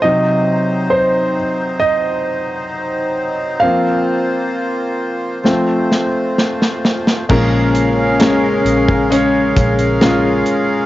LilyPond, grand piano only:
<<
  \new Staff \with { instrumentName = "Grand piano" } { \time 4/4 \key f \phrygian \tempo 4 = 66 ees''4 c''4 ees''2 | f''2 r2 | \key bes \minor <aes des' bes'>4 <aes des' bes'>4 <aes des' des''>4 <aes des' f'>4 | }
  \new Staff \with { instrumentName = "Grand piano" } { \clef bass \time 4/4 \key f \phrygian <c ges ees'>4. r2 r8 | <f bes c'>2 <f a c'>8 r4. | \key bes \minor <bes, f>4. r2 r8 | }
>>